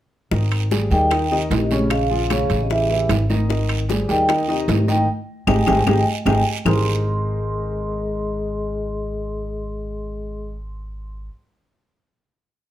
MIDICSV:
0, 0, Header, 1, 6, 480
1, 0, Start_track
1, 0, Key_signature, -4, "major"
1, 0, Tempo, 395778
1, 389, Time_signature, 4, 2, 24, 8
1, 15413, End_track
2, 0, Start_track
2, 0, Title_t, "Vibraphone"
2, 0, Program_c, 0, 11
2, 1109, Note_on_c, 0, 79, 92
2, 1595, Note_on_c, 0, 75, 70
2, 1608, Note_off_c, 0, 79, 0
2, 1704, Note_off_c, 0, 75, 0
2, 1834, Note_on_c, 0, 75, 73
2, 2283, Note_off_c, 0, 75, 0
2, 2317, Note_on_c, 0, 77, 80
2, 3192, Note_on_c, 0, 75, 54
2, 3223, Note_off_c, 0, 77, 0
2, 3279, Note_off_c, 0, 75, 0
2, 3281, Note_on_c, 0, 76, 71
2, 3729, Note_off_c, 0, 76, 0
2, 4980, Note_on_c, 0, 79, 87
2, 5454, Note_on_c, 0, 75, 77
2, 5467, Note_off_c, 0, 79, 0
2, 5675, Note_off_c, 0, 75, 0
2, 5689, Note_on_c, 0, 75, 76
2, 5934, Note_off_c, 0, 75, 0
2, 5934, Note_on_c, 0, 79, 73
2, 6153, Note_off_c, 0, 79, 0
2, 6639, Note_on_c, 0, 79, 84
2, 6640, Note_on_c, 0, 75, 88
2, 6640, Note_on_c, 0, 80, 85
2, 6794, Note_off_c, 0, 79, 0
2, 6795, Note_off_c, 0, 75, 0
2, 6795, Note_off_c, 0, 80, 0
2, 6890, Note_on_c, 0, 79, 86
2, 6890, Note_on_c, 0, 80, 87
2, 6891, Note_on_c, 0, 75, 84
2, 7040, Note_off_c, 0, 79, 0
2, 7040, Note_off_c, 0, 80, 0
2, 7041, Note_off_c, 0, 75, 0
2, 7118, Note_on_c, 0, 79, 85
2, 7119, Note_on_c, 0, 75, 92
2, 7119, Note_on_c, 0, 80, 82
2, 7273, Note_off_c, 0, 79, 0
2, 7273, Note_off_c, 0, 80, 0
2, 7274, Note_off_c, 0, 75, 0
2, 7594, Note_on_c, 0, 75, 76
2, 7594, Note_on_c, 0, 79, 85
2, 7595, Note_on_c, 0, 80, 83
2, 7750, Note_off_c, 0, 75, 0
2, 7750, Note_off_c, 0, 79, 0
2, 7751, Note_off_c, 0, 80, 0
2, 8072, Note_on_c, 0, 84, 72
2, 13675, Note_off_c, 0, 84, 0
2, 15413, End_track
3, 0, Start_track
3, 0, Title_t, "Grand piano"
3, 0, Program_c, 1, 0
3, 380, Note_on_c, 1, 51, 67
3, 389, Note_on_c, 1, 63, 61
3, 389, Note_on_c, 1, 75, 62
3, 779, Note_off_c, 1, 51, 0
3, 785, Note_off_c, 1, 63, 0
3, 785, Note_off_c, 1, 75, 0
3, 863, Note_on_c, 1, 55, 57
3, 867, Note_on_c, 1, 67, 59
3, 875, Note_on_c, 1, 68, 61
3, 1064, Note_off_c, 1, 55, 0
3, 1066, Note_off_c, 1, 67, 0
3, 1071, Note_off_c, 1, 68, 0
3, 1105, Note_on_c, 1, 55, 65
3, 1109, Note_on_c, 1, 67, 61
3, 1115, Note_on_c, 1, 68, 65
3, 1306, Note_off_c, 1, 55, 0
3, 1308, Note_off_c, 1, 67, 0
3, 1312, Note_off_c, 1, 68, 0
3, 1352, Note_on_c, 1, 51, 72
3, 1357, Note_on_c, 1, 63, 68
3, 1361, Note_on_c, 1, 75, 68
3, 1551, Note_off_c, 1, 51, 0
3, 1553, Note_off_c, 1, 63, 0
3, 1556, Note_off_c, 1, 75, 0
3, 1593, Note_on_c, 1, 51, 75
3, 1598, Note_on_c, 1, 63, 75
3, 1601, Note_on_c, 1, 75, 69
3, 1989, Note_off_c, 1, 51, 0
3, 1993, Note_off_c, 1, 63, 0
3, 1994, Note_off_c, 1, 75, 0
3, 2077, Note_on_c, 1, 49, 69
3, 2083, Note_on_c, 1, 73, 67
3, 2084, Note_on_c, 1, 61, 67
3, 2472, Note_off_c, 1, 49, 0
3, 2476, Note_off_c, 1, 61, 0
3, 2476, Note_off_c, 1, 73, 0
3, 2550, Note_on_c, 1, 65, 62
3, 2551, Note_on_c, 1, 53, 60
3, 2555, Note_on_c, 1, 68, 66
3, 2751, Note_off_c, 1, 65, 0
3, 2752, Note_off_c, 1, 53, 0
3, 2754, Note_off_c, 1, 68, 0
3, 2794, Note_on_c, 1, 49, 67
3, 2800, Note_on_c, 1, 61, 68
3, 2804, Note_on_c, 1, 73, 73
3, 3191, Note_off_c, 1, 49, 0
3, 3195, Note_off_c, 1, 61, 0
3, 3197, Note_off_c, 1, 73, 0
3, 3280, Note_on_c, 1, 52, 65
3, 3284, Note_on_c, 1, 64, 62
3, 3290, Note_on_c, 1, 67, 66
3, 3478, Note_off_c, 1, 52, 0
3, 3480, Note_off_c, 1, 64, 0
3, 3484, Note_off_c, 1, 67, 0
3, 3514, Note_on_c, 1, 52, 66
3, 3515, Note_on_c, 1, 64, 66
3, 3521, Note_on_c, 1, 67, 70
3, 3912, Note_off_c, 1, 52, 0
3, 3913, Note_off_c, 1, 64, 0
3, 3916, Note_off_c, 1, 67, 0
3, 4000, Note_on_c, 1, 51, 71
3, 4002, Note_on_c, 1, 63, 73
3, 4004, Note_on_c, 1, 75, 72
3, 4199, Note_off_c, 1, 51, 0
3, 4200, Note_off_c, 1, 63, 0
3, 4201, Note_off_c, 1, 75, 0
3, 4233, Note_on_c, 1, 51, 68
3, 4235, Note_on_c, 1, 63, 64
3, 4238, Note_on_c, 1, 75, 66
3, 4632, Note_off_c, 1, 51, 0
3, 4633, Note_off_c, 1, 63, 0
3, 4635, Note_off_c, 1, 75, 0
3, 4721, Note_on_c, 1, 55, 63
3, 4721, Note_on_c, 1, 67, 56
3, 4727, Note_on_c, 1, 68, 64
3, 4920, Note_off_c, 1, 55, 0
3, 4920, Note_off_c, 1, 67, 0
3, 4923, Note_off_c, 1, 68, 0
3, 4954, Note_on_c, 1, 55, 67
3, 4954, Note_on_c, 1, 67, 71
3, 4960, Note_on_c, 1, 68, 62
3, 5155, Note_off_c, 1, 67, 0
3, 5156, Note_off_c, 1, 55, 0
3, 5159, Note_off_c, 1, 68, 0
3, 5199, Note_on_c, 1, 51, 74
3, 5200, Note_on_c, 1, 63, 71
3, 5206, Note_on_c, 1, 75, 69
3, 5398, Note_off_c, 1, 51, 0
3, 5399, Note_off_c, 1, 63, 0
3, 5402, Note_off_c, 1, 75, 0
3, 5433, Note_on_c, 1, 51, 75
3, 5436, Note_on_c, 1, 63, 80
3, 5444, Note_on_c, 1, 75, 80
3, 5831, Note_off_c, 1, 51, 0
3, 5833, Note_off_c, 1, 63, 0
3, 5838, Note_off_c, 1, 75, 0
3, 5916, Note_on_c, 1, 51, 79
3, 5920, Note_on_c, 1, 63, 71
3, 5920, Note_on_c, 1, 75, 72
3, 6116, Note_off_c, 1, 51, 0
3, 6118, Note_off_c, 1, 63, 0
3, 6118, Note_off_c, 1, 75, 0
3, 6634, Note_on_c, 1, 67, 85
3, 6635, Note_on_c, 1, 63, 87
3, 6637, Note_on_c, 1, 68, 82
3, 6791, Note_off_c, 1, 67, 0
3, 6792, Note_off_c, 1, 63, 0
3, 6793, Note_off_c, 1, 68, 0
3, 6867, Note_on_c, 1, 63, 87
3, 6867, Note_on_c, 1, 68, 88
3, 6868, Note_on_c, 1, 67, 85
3, 7026, Note_off_c, 1, 63, 0
3, 7026, Note_off_c, 1, 68, 0
3, 7027, Note_off_c, 1, 67, 0
3, 7116, Note_on_c, 1, 63, 89
3, 7119, Note_on_c, 1, 67, 91
3, 7121, Note_on_c, 1, 68, 84
3, 7272, Note_off_c, 1, 63, 0
3, 7274, Note_off_c, 1, 67, 0
3, 7275, Note_off_c, 1, 68, 0
3, 7601, Note_on_c, 1, 63, 82
3, 7601, Note_on_c, 1, 67, 80
3, 7601, Note_on_c, 1, 68, 82
3, 7754, Note_off_c, 1, 63, 0
3, 7754, Note_off_c, 1, 68, 0
3, 7755, Note_off_c, 1, 67, 0
3, 8071, Note_on_c, 1, 63, 69
3, 8073, Note_on_c, 1, 56, 76
3, 8078, Note_on_c, 1, 67, 70
3, 8079, Note_on_c, 1, 68, 64
3, 8083, Note_on_c, 1, 70, 74
3, 8084, Note_on_c, 1, 72, 83
3, 13675, Note_off_c, 1, 63, 0
3, 13676, Note_off_c, 1, 56, 0
3, 13678, Note_off_c, 1, 67, 0
3, 13679, Note_off_c, 1, 68, 0
3, 13681, Note_off_c, 1, 70, 0
3, 13681, Note_off_c, 1, 72, 0
3, 15413, End_track
4, 0, Start_track
4, 0, Title_t, "Trombone"
4, 0, Program_c, 2, 57
4, 1111, Note_on_c, 2, 51, 81
4, 1560, Note_off_c, 2, 51, 0
4, 1592, Note_on_c, 2, 48, 61
4, 1701, Note_off_c, 2, 48, 0
4, 1833, Note_on_c, 2, 48, 66
4, 2283, Note_off_c, 2, 48, 0
4, 2319, Note_on_c, 2, 49, 72
4, 3149, Note_off_c, 2, 49, 0
4, 3193, Note_on_c, 2, 48, 44
4, 3274, Note_off_c, 2, 48, 0
4, 3280, Note_on_c, 2, 49, 56
4, 3729, Note_off_c, 2, 49, 0
4, 4977, Note_on_c, 2, 51, 76
4, 5418, Note_off_c, 2, 51, 0
4, 5460, Note_on_c, 2, 48, 67
4, 5676, Note_off_c, 2, 48, 0
4, 5691, Note_on_c, 2, 48, 65
4, 5911, Note_off_c, 2, 48, 0
4, 5935, Note_on_c, 2, 51, 80
4, 6153, Note_off_c, 2, 51, 0
4, 6645, Note_on_c, 2, 48, 83
4, 6760, Note_off_c, 2, 48, 0
4, 6890, Note_on_c, 2, 48, 90
4, 7003, Note_off_c, 2, 48, 0
4, 7115, Note_on_c, 2, 48, 73
4, 7232, Note_off_c, 2, 48, 0
4, 7600, Note_on_c, 2, 48, 84
4, 7715, Note_off_c, 2, 48, 0
4, 8074, Note_on_c, 2, 56, 65
4, 12827, Note_off_c, 2, 56, 0
4, 15413, End_track
5, 0, Start_track
5, 0, Title_t, "Upright bass"
5, 0, Program_c, 3, 32
5, 380, Note_on_c, 3, 32, 79
5, 1060, Note_off_c, 3, 32, 0
5, 1104, Note_on_c, 3, 39, 76
5, 1783, Note_off_c, 3, 39, 0
5, 1825, Note_on_c, 3, 34, 77
5, 2963, Note_off_c, 3, 34, 0
5, 3032, Note_on_c, 3, 33, 77
5, 3710, Note_off_c, 3, 33, 0
5, 3751, Note_on_c, 3, 32, 81
5, 4887, Note_off_c, 3, 32, 0
5, 4958, Note_on_c, 3, 39, 69
5, 5633, Note_off_c, 3, 39, 0
5, 5675, Note_on_c, 3, 32, 77
5, 6125, Note_off_c, 3, 32, 0
5, 6636, Note_on_c, 3, 32, 86
5, 6818, Note_off_c, 3, 32, 0
5, 6876, Note_on_c, 3, 32, 80
5, 7057, Note_off_c, 3, 32, 0
5, 7113, Note_on_c, 3, 32, 82
5, 7295, Note_off_c, 3, 32, 0
5, 7587, Note_on_c, 3, 32, 82
5, 7772, Note_off_c, 3, 32, 0
5, 8068, Note_on_c, 3, 32, 77
5, 13673, Note_off_c, 3, 32, 0
5, 15413, End_track
6, 0, Start_track
6, 0, Title_t, "Drums"
6, 382, Note_on_c, 9, 60, 64
6, 385, Note_on_c, 9, 74, 66
6, 386, Note_on_c, 9, 63, 30
6, 503, Note_off_c, 9, 60, 0
6, 506, Note_off_c, 9, 74, 0
6, 508, Note_off_c, 9, 63, 0
6, 625, Note_on_c, 9, 75, 52
6, 626, Note_on_c, 9, 63, 30
6, 627, Note_on_c, 9, 65, 78
6, 746, Note_off_c, 9, 75, 0
6, 748, Note_off_c, 9, 63, 0
6, 748, Note_off_c, 9, 65, 0
6, 865, Note_on_c, 9, 63, 87
6, 865, Note_on_c, 9, 66, 48
6, 867, Note_on_c, 9, 73, 62
6, 872, Note_on_c, 9, 60, 52
6, 986, Note_off_c, 9, 63, 0
6, 986, Note_off_c, 9, 66, 0
6, 988, Note_off_c, 9, 73, 0
6, 993, Note_off_c, 9, 60, 0
6, 1099, Note_on_c, 9, 73, 54
6, 1109, Note_on_c, 9, 63, 30
6, 1114, Note_on_c, 9, 60, 29
6, 1220, Note_off_c, 9, 73, 0
6, 1230, Note_off_c, 9, 63, 0
6, 1236, Note_off_c, 9, 60, 0
6, 1342, Note_on_c, 9, 75, 55
6, 1343, Note_on_c, 9, 74, 66
6, 1350, Note_on_c, 9, 60, 68
6, 1351, Note_on_c, 9, 63, 30
6, 1352, Note_on_c, 9, 65, 85
6, 1463, Note_off_c, 9, 75, 0
6, 1464, Note_off_c, 9, 74, 0
6, 1471, Note_off_c, 9, 60, 0
6, 1472, Note_off_c, 9, 63, 0
6, 1474, Note_off_c, 9, 65, 0
6, 1589, Note_on_c, 9, 63, 31
6, 1594, Note_on_c, 9, 60, 32
6, 1710, Note_off_c, 9, 63, 0
6, 1716, Note_off_c, 9, 60, 0
6, 1830, Note_on_c, 9, 73, 57
6, 1831, Note_on_c, 9, 63, 71
6, 1835, Note_on_c, 9, 65, 69
6, 1835, Note_on_c, 9, 66, 86
6, 1837, Note_on_c, 9, 60, 32
6, 1837, Note_on_c, 9, 61, 73
6, 1952, Note_off_c, 9, 63, 0
6, 1952, Note_off_c, 9, 73, 0
6, 1957, Note_off_c, 9, 65, 0
6, 1957, Note_off_c, 9, 66, 0
6, 1959, Note_off_c, 9, 60, 0
6, 1959, Note_off_c, 9, 61, 0
6, 2070, Note_on_c, 9, 73, 64
6, 2074, Note_on_c, 9, 60, 34
6, 2077, Note_on_c, 9, 63, 75
6, 2191, Note_off_c, 9, 73, 0
6, 2195, Note_off_c, 9, 60, 0
6, 2198, Note_off_c, 9, 63, 0
6, 2309, Note_on_c, 9, 65, 86
6, 2310, Note_on_c, 9, 75, 61
6, 2311, Note_on_c, 9, 74, 62
6, 2316, Note_on_c, 9, 60, 59
6, 2317, Note_on_c, 9, 63, 33
6, 2430, Note_off_c, 9, 65, 0
6, 2431, Note_off_c, 9, 75, 0
6, 2432, Note_off_c, 9, 74, 0
6, 2437, Note_off_c, 9, 60, 0
6, 2438, Note_off_c, 9, 63, 0
6, 2556, Note_on_c, 9, 63, 29
6, 2678, Note_off_c, 9, 63, 0
6, 2791, Note_on_c, 9, 75, 60
6, 2793, Note_on_c, 9, 63, 88
6, 2793, Note_on_c, 9, 65, 82
6, 2793, Note_on_c, 9, 66, 50
6, 2795, Note_on_c, 9, 73, 63
6, 2803, Note_on_c, 9, 60, 51
6, 2912, Note_off_c, 9, 75, 0
6, 2914, Note_off_c, 9, 63, 0
6, 2915, Note_off_c, 9, 65, 0
6, 2915, Note_off_c, 9, 66, 0
6, 2916, Note_off_c, 9, 73, 0
6, 2924, Note_off_c, 9, 60, 0
6, 3029, Note_on_c, 9, 65, 62
6, 3032, Note_on_c, 9, 73, 57
6, 3046, Note_on_c, 9, 60, 30
6, 3151, Note_off_c, 9, 65, 0
6, 3153, Note_off_c, 9, 73, 0
6, 3167, Note_off_c, 9, 60, 0
6, 3275, Note_on_c, 9, 74, 67
6, 3280, Note_on_c, 9, 63, 30
6, 3283, Note_on_c, 9, 60, 66
6, 3396, Note_off_c, 9, 74, 0
6, 3401, Note_off_c, 9, 63, 0
6, 3404, Note_off_c, 9, 60, 0
6, 3520, Note_on_c, 9, 63, 28
6, 3526, Note_on_c, 9, 60, 32
6, 3641, Note_off_c, 9, 63, 0
6, 3647, Note_off_c, 9, 60, 0
6, 3753, Note_on_c, 9, 65, 89
6, 3753, Note_on_c, 9, 66, 81
6, 3756, Note_on_c, 9, 73, 56
6, 3758, Note_on_c, 9, 75, 53
6, 3770, Note_on_c, 9, 60, 32
6, 3770, Note_on_c, 9, 61, 77
6, 3874, Note_off_c, 9, 65, 0
6, 3874, Note_off_c, 9, 66, 0
6, 3877, Note_off_c, 9, 73, 0
6, 3879, Note_off_c, 9, 75, 0
6, 3892, Note_off_c, 9, 60, 0
6, 3892, Note_off_c, 9, 61, 0
6, 3998, Note_on_c, 9, 73, 60
6, 3999, Note_on_c, 9, 63, 70
6, 4008, Note_on_c, 9, 60, 32
6, 4120, Note_off_c, 9, 63, 0
6, 4120, Note_off_c, 9, 73, 0
6, 4129, Note_off_c, 9, 60, 0
6, 4240, Note_on_c, 9, 74, 64
6, 4246, Note_on_c, 9, 63, 31
6, 4249, Note_on_c, 9, 60, 64
6, 4361, Note_off_c, 9, 74, 0
6, 4367, Note_off_c, 9, 63, 0
6, 4370, Note_off_c, 9, 60, 0
6, 4478, Note_on_c, 9, 65, 77
6, 4482, Note_on_c, 9, 75, 56
6, 4484, Note_on_c, 9, 63, 31
6, 4600, Note_off_c, 9, 65, 0
6, 4603, Note_off_c, 9, 75, 0
6, 4606, Note_off_c, 9, 63, 0
6, 4714, Note_on_c, 9, 66, 53
6, 4721, Note_on_c, 9, 73, 65
6, 4725, Note_on_c, 9, 63, 92
6, 4736, Note_on_c, 9, 60, 51
6, 4836, Note_off_c, 9, 66, 0
6, 4843, Note_off_c, 9, 73, 0
6, 4847, Note_off_c, 9, 63, 0
6, 4858, Note_off_c, 9, 60, 0
6, 4962, Note_on_c, 9, 73, 58
6, 4964, Note_on_c, 9, 63, 32
6, 4977, Note_on_c, 9, 60, 28
6, 5083, Note_off_c, 9, 73, 0
6, 5086, Note_off_c, 9, 63, 0
6, 5099, Note_off_c, 9, 60, 0
6, 5200, Note_on_c, 9, 65, 86
6, 5201, Note_on_c, 9, 74, 61
6, 5202, Note_on_c, 9, 75, 50
6, 5203, Note_on_c, 9, 63, 30
6, 5212, Note_on_c, 9, 60, 69
6, 5321, Note_off_c, 9, 65, 0
6, 5322, Note_off_c, 9, 74, 0
6, 5323, Note_off_c, 9, 75, 0
6, 5324, Note_off_c, 9, 63, 0
6, 5334, Note_off_c, 9, 60, 0
6, 5447, Note_on_c, 9, 63, 32
6, 5458, Note_on_c, 9, 60, 31
6, 5569, Note_off_c, 9, 63, 0
6, 5579, Note_off_c, 9, 60, 0
6, 5679, Note_on_c, 9, 73, 57
6, 5684, Note_on_c, 9, 63, 72
6, 5685, Note_on_c, 9, 65, 63
6, 5685, Note_on_c, 9, 66, 78
6, 5692, Note_on_c, 9, 60, 29
6, 5692, Note_on_c, 9, 61, 74
6, 5800, Note_off_c, 9, 73, 0
6, 5805, Note_off_c, 9, 63, 0
6, 5806, Note_off_c, 9, 65, 0
6, 5806, Note_off_c, 9, 66, 0
6, 5813, Note_off_c, 9, 60, 0
6, 5813, Note_off_c, 9, 61, 0
6, 5923, Note_on_c, 9, 73, 68
6, 5924, Note_on_c, 9, 63, 73
6, 5930, Note_on_c, 9, 60, 30
6, 6044, Note_off_c, 9, 73, 0
6, 6045, Note_off_c, 9, 63, 0
6, 6051, Note_off_c, 9, 60, 0
6, 6639, Note_on_c, 9, 74, 85
6, 6639, Note_on_c, 9, 75, 93
6, 6640, Note_on_c, 9, 65, 86
6, 6644, Note_on_c, 9, 61, 88
6, 6645, Note_on_c, 9, 63, 97
6, 6760, Note_off_c, 9, 75, 0
6, 6761, Note_off_c, 9, 74, 0
6, 6762, Note_off_c, 9, 65, 0
6, 6765, Note_off_c, 9, 61, 0
6, 6767, Note_off_c, 9, 63, 0
6, 6876, Note_on_c, 9, 75, 76
6, 6877, Note_on_c, 9, 74, 78
6, 6882, Note_on_c, 9, 65, 94
6, 6883, Note_on_c, 9, 63, 85
6, 6886, Note_on_c, 9, 61, 80
6, 6997, Note_off_c, 9, 75, 0
6, 6998, Note_off_c, 9, 74, 0
6, 7003, Note_off_c, 9, 65, 0
6, 7004, Note_off_c, 9, 63, 0
6, 7007, Note_off_c, 9, 61, 0
6, 7114, Note_on_c, 9, 74, 93
6, 7118, Note_on_c, 9, 75, 80
6, 7121, Note_on_c, 9, 61, 89
6, 7123, Note_on_c, 9, 63, 81
6, 7124, Note_on_c, 9, 65, 86
6, 7235, Note_off_c, 9, 74, 0
6, 7239, Note_off_c, 9, 75, 0
6, 7242, Note_off_c, 9, 61, 0
6, 7244, Note_off_c, 9, 63, 0
6, 7246, Note_off_c, 9, 65, 0
6, 7593, Note_on_c, 9, 63, 86
6, 7595, Note_on_c, 9, 65, 95
6, 7595, Note_on_c, 9, 74, 91
6, 7599, Note_on_c, 9, 61, 88
6, 7599, Note_on_c, 9, 75, 82
6, 7714, Note_off_c, 9, 63, 0
6, 7716, Note_off_c, 9, 65, 0
6, 7716, Note_off_c, 9, 74, 0
6, 7720, Note_off_c, 9, 61, 0
6, 7720, Note_off_c, 9, 75, 0
6, 8071, Note_on_c, 9, 74, 85
6, 8074, Note_on_c, 9, 75, 91
6, 8075, Note_on_c, 9, 64, 82
6, 8075, Note_on_c, 9, 66, 87
6, 8079, Note_on_c, 9, 61, 94
6, 8193, Note_off_c, 9, 74, 0
6, 8196, Note_off_c, 9, 64, 0
6, 8196, Note_off_c, 9, 66, 0
6, 8196, Note_off_c, 9, 75, 0
6, 8200, Note_off_c, 9, 61, 0
6, 15413, End_track
0, 0, End_of_file